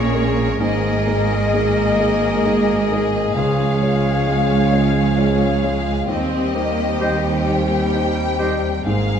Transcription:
0.00 0.56 A#1 medium
0.00 0.56 A#2 medium
0.00 0.14 G#3 medium
0.00 3.33 G#3 medium
0.00 0.56 A#3 medium
0.00 0.14 C#4 medium
0.00 0.57 C#4 medium
0.00 0.55 G#4 medium
0.00 0.56 G#4 medium
0.00 0.15 A#4 medium
0.00 0.56 A#4 medium
0.00 0.37 C#5 medium
0.00 0.56 C#5 medium
0.14 0.56 G#3 soft
0.14 0.56 C#4 soft
0.14 0.57 A#4 medium
0.60 3.32 G#1 medium
0.60 1.05 G#2 medium
0.60 3.32 G#2 medium
0.60 3.32 A#3 medium
0.60 3.33 A#3 medium
0.60 6.04 G#4 medium
0.60 3.05 A#4 medium
0.60 3.33 D#5 medium
1.07 1.48 D#4 soft
1.07 1.49 A#4 medium
1.53 1.95 G#3 soft
1.53 1.95 D#4 soft
1.53 1.95 A#4 medium
1.99 2.41 G#3 medium
1.99 2.41 D#4 medium
1.99 2.41 A#4 medium
2.45 2.87 D#4 soft
2.45 2.87 A#4 medium
2.91 3.32 G#3 soft
2.91 3.32 D#4 soft
2.91 3.33 A#4 medium
3.36 6.04 C#2 medium
3.36 3.80 C#2 medium
3.36 6.04 C#2 medium
3.36 5.90 F3 medium
3.36 6.04 G#3 medium
3.36 5.90 C#4 medium
3.36 6.04 C#5 medium
3.36 6.04 F5 medium
3.36 6.08 F5 medium
3.82 4.23 F4 medium
3.82 4.23 C#5 medium
4.27 4.68 G#3 soft
4.27 4.68 F4 soft
4.27 4.68 C#5 medium
4.72 5.13 G#3 medium
4.72 5.14 F4 soft
4.72 5.13 C#5 medium
5.18 5.59 F4 medium
5.18 5.59 C#5 medium
5.63 6.04 G#3 soft
5.63 6.05 F4 soft
5.63 6.05 C#5 medium
6.07 8.82 D#2 medium
6.07 6.53 D#2 medium
6.07 8.82 D#2 medium
6.07 8.82 G3 medium
6.07 8.82 C4 medium
6.07 6.51 C4 medium
6.07 8.82 G4 medium
6.07 7.44 D#5 medium
6.54 7.01 A#3 medium
6.54 6.97 D#4 medium
6.54 6.97 C5 medium
7.01 8.86 G3 medium
7.01 7.44 G3 soft
7.01 7.44 D#4 soft
7.01 7.17 G4 medium
7.01 7.17 C5 medium
7.01 7.44 C5 medium
7.01 7.23 D#5 medium
7.47 7.90 G3 soft
7.47 7.90 D#4 soft
7.47 7.90 C5 medium
7.47 8.86 G5 medium
7.94 8.36 D#4 medium
7.94 8.36 C5 medium
8.39 8.82 G3 soft
8.39 8.83 D#4 soft
8.39 8.55 G4 medium
8.39 8.56 C5 medium
8.39 8.83 C5 medium
8.39 8.61 D#5 medium
8.86 9.20 G#1 medium
8.86 9.20 G#2 medium
8.86 9.20 G#3 medium
8.86 9.20 A#3 medium
8.86 9.20 G#4 medium
8.86 9.20 F5 medium

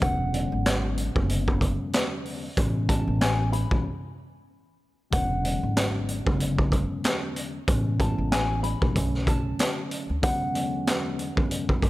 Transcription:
0.00 0.46 E1 loud
0.00 0.31 E2 loud
0.00 0.31 D3 medium
0.00 0.31 F#3 medium
0.00 0.31 G#3 medium
0.00 0.31 B3 medium
0.00 0.31 C#4 loud
0.00 1.44 F#5 loud
0.00 kick loud
0.00 closed hi-hat medium
0.32 1.08 E2 medium
0.32 1.08 D3 medium
0.32 1.08 F#3 medium
0.32 1.08 G#3 medium
0.32 1.08 B3 medium
0.32 1.08 C#4 loud
0.32 closed hi-hat medium
0.52 1.08 G#1 loud
0.66 snare loud
0.66 clap loud
0.66 closed hi-hat loud
0.98 closed hi-hat medium
1.14 1.72 F#1 loud
1.14 2.46 E2 loud
1.14 2.47 D3 medium
1.14 2.47 F#3 medium
1.14 2.47 G#3 medium
1.14 2.47 B3 medium
1.14 2.47 C#4 loud
1.14 kick loud
1.30 closed hi-hat medium
1.48 kick medium
1.61 kick loud
1.61 closed hi-hat medium
1.93 snare loud
1.93 clap loud
1.93 closed hi-hat medium
2.25 open hi-hat medium
2.57 3.01 A1 loud
2.57 2.87 A2 medium
2.57 2.87 E3 medium
2.57 2.87 G#3 medium
2.57 2.88 B3 medium
2.57 2.88 C#4 loud
2.57 kick loud
2.57 closed hi-hat medium
2.89 3.64 A2 medium
2.89 3.64 E3 medium
2.89 3.64 G#3 medium
2.89 3.64 B3 medium
2.89 3.65 C#4 loud
2.89 3.18 A5 medium
2.89 kick loud
2.89 closed hi-hat medium
3.08 3.63 A1 loud
3.21 3.50 G#5 medium
3.21 snare loud
3.21 clap medium
3.21 closed hi-hat loud
3.52 3.83 B5 medium
3.52 closed hi-hat medium
3.71 3.83 B1 loud
3.71 3.85 A2 medium
3.71 3.86 E3 medium
3.71 3.86 G#3 medium
3.71 3.86 B3 medium
3.71 3.86 C#4 loud
3.71 kick loud
5.10 5.56 E1 loud
5.10 5.41 E2 loud
5.10 5.41 D3 medium
5.10 5.41 F#3 medium
5.10 5.42 G#3 medium
5.10 5.42 B3 medium
5.10 5.42 C#4 loud
5.10 6.54 F#5 medium
5.10 kick loud
5.10 closed hi-hat loud
5.43 6.18 E2 loud
5.43 6.18 D3 medium
5.43 6.18 F#3 medium
5.43 6.19 G#3 loud
5.43 6.19 B3 medium
5.43 6.19 C#4 loud
5.43 closed hi-hat medium
5.63 6.19 G#1 medium
5.77 snare loud
5.77 clap loud
5.77 closed hi-hat loud
6.09 closed hi-hat medium
6.24 6.82 F#1 loud
6.24 7.57 E2 medium
6.24 7.57 D3 medium
6.24 7.57 F#3 medium
6.24 7.57 G#3 medium
6.24 7.57 B3 medium
6.24 7.58 C#4 loud
6.24 kick loud
6.40 closed hi-hat medium
6.58 kick medium
6.72 kick loud
6.72 closed hi-hat medium
7.04 snare loud
7.04 clap loud
7.04 closed hi-hat medium
7.36 closed hi-hat medium
7.68 8.12 A1 loud
7.68 7.98 A2 medium
7.68 7.98 E3 medium
7.68 7.98 G#3 medium
7.68 7.98 B3 medium
7.68 7.98 C#4 loud
7.68 kick loud
7.68 closed hi-hat medium
8.00 8.75 A2 loud
8.00 8.75 E3 medium
8.00 8.75 G#3 medium
8.00 8.75 B3 medium
8.00 8.75 C#4 loud
8.00 8.29 A5 medium
8.00 kick loud
8.00 closed hi-hat medium
8.18 8.74 A1 medium
8.32 8.60 G#5 loud
8.32 snare loud
8.32 clap loud
8.32 closed hi-hat loud
8.63 9.23 B5 medium
8.63 closed hi-hat medium
8.82 8.94 B1 loud
8.82 8.96 A2 medium
8.82 8.96 E3 medium
8.82 8.96 G#3 medium
8.82 8.96 B3 medium
8.82 8.95 C#4 loud
8.82 kick loud
8.95 9.51 B1 loud
8.95 10.14 D3 loud
8.95 10.14 F#3 medium
8.95 10.14 A3 medium
8.95 10.15 C#4 loud
8.95 kick loud
8.95 closed hi-hat medium
9.14 snare soft
9.27 10.20 A5 medium
9.27 kick loud
9.27 closed hi-hat medium
9.59 snare loud
9.59 clap loud
9.59 closed hi-hat loud
9.91 closed hi-hat medium
10.10 10.23 D2 medium
10.21 10.52 E2 loud
10.21 10.52 D3 medium
10.21 10.52 F#3 medium
10.21 10.52 G#3 medium
10.21 10.52 B3 medium
10.21 10.52 C#4 loud
10.21 11.65 F#5 loud
10.21 kick loud
10.21 closed hi-hat medium
10.53 11.29 E2 medium
10.53 11.29 D3 medium
10.53 11.29 F#3 medium
10.53 11.29 G#3 medium
10.53 11.29 B3 medium
10.53 11.29 C#4 loud
10.53 closed hi-hat medium
10.87 snare loud
10.87 clap medium
10.87 closed hi-hat medium
11.19 closed hi-hat medium
11.35 11.90 E2 loud
11.35 11.90 D3 medium
11.35 11.90 F#3 medium
11.35 11.90 G#3 medium
11.35 11.90 B3 loud
11.35 11.90 C#4 loud
11.35 kick loud
11.51 closed hi-hat medium
11.69 kick medium
11.82 kick loud
11.82 closed hi-hat medium

